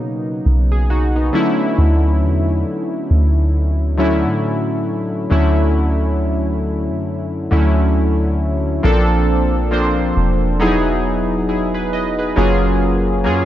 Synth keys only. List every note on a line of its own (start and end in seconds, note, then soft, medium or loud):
0.00 1.35 C#3 medium
0.00 1.33 F#3 medium
0.00 1.36 A#3 medium
0.00 1.16 B3 medium
0.00 0.91 D#4 loud
0.72 0.89 G#4 medium
0.90 1.15 D#4 medium
0.90 1.14 F#4 medium
1.16 1.58 B3 medium
1.16 1.57 D#4 medium
1.33 2.81 D3 medium
1.33 2.81 F#3 medium
1.33 2.82 A3 medium
1.33 2.82 C#4 medium
1.33 2.82 E4 loud
3.97 5.11 D3 medium
3.97 5.11 F#3 medium
3.97 5.11 A3 medium
3.97 5.12 C#4 medium
3.97 5.12 E4 medium
5.30 6.78 D3 medium
5.30 6.79 F#3 medium
5.30 6.79 A3 medium
5.30 6.79 C#4 medium
5.30 6.79 E4 medium
7.51 8.64 D3 medium
7.51 8.64 F#3 medium
7.51 8.64 A3 medium
7.51 8.65 C#4 medium
7.51 8.65 E4 medium
8.83 9.59 F3 medium
8.83 9.59 A#3 medium
8.83 9.59 C4 medium
8.83 9.60 D4 medium
8.83 9.60 A4 loud
9.71 10.60 F3 medium
9.71 10.60 A#3 medium
9.71 10.60 C4 medium
9.71 10.61 D4 medium
9.71 10.61 C5 medium
10.59 11.73 F#3 medium
10.59 11.73 B3 medium
10.59 11.49 D#4 medium
10.59 11.48 E4 medium
10.59 11.48 G#4 loud
11.49 11.73 E4 medium
11.49 11.73 G#4 medium
11.74 11.92 G#4 medium
11.74 11.92 B4 medium
11.93 12.18 B4 medium
11.93 12.17 D#5 medium
12.19 12.37 G#4 medium
12.19 12.60 B4 medium
12.36 13.12 F#3 loud
12.36 13.12 A#3 medium
12.36 13.12 C#4 medium
12.36 13.13 F4 medium
12.36 13.13 G#4 loud
13.24 13.45 F#3 medium
13.24 13.45 A#3 medium
13.24 13.45 C#4 medium
13.24 13.45 F4 medium
13.24 13.45 G#4 medium